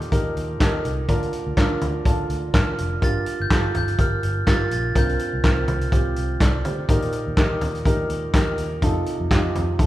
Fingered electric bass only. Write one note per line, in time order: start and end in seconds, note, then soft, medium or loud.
0.12 0.32 D#2 loud
0.36 0.56 D#2 medium
0.60 0.80 D#2 medium
0.85 1.05 C2 medium
1.09 1.28 D2 loud
1.47 1.55 D2 medium
1.57 1.77 D2 medium
1.82 2.01 D2 medium
2.06 2.25 D2 medium
2.30 2.49 D2 medium
2.54 2.74 D2 medium
2.78 2.98 F1 medium
3.02 3.22 G1 medium
3.40 3.49 G1 medium
3.50 3.70 G1 medium
3.75 3.95 G1 medium
3.99 4.19 G1 loud
4.23 4.43 G1 medium
4.47 4.67 G1 loud
4.71 4.91 A#1 medium
4.95 5.15 C2 loud
5.33 5.42 C2 medium
5.44 5.64 C2 loud
5.68 5.88 C2 medium
5.92 6.12 C2 medium
6.17 6.36 C2 medium
6.40 6.60 C2 medium
6.65 6.85 D2 medium
6.89 7.09 D#2 medium
7.27 7.36 D#2 medium
7.37 7.57 D#2 medium
7.62 7.81 D#2 medium
7.86 8.05 D#2 loud
8.10 8.30 D#2 medium
8.34 8.54 D#2 medium
8.58 8.82 D#2 medium
8.82 9.02 F2 loud
9.20 9.29 F2 medium
9.31 9.51 F2 medium
9.55 9.75 F2 medium
9.79 9.86 F2 loud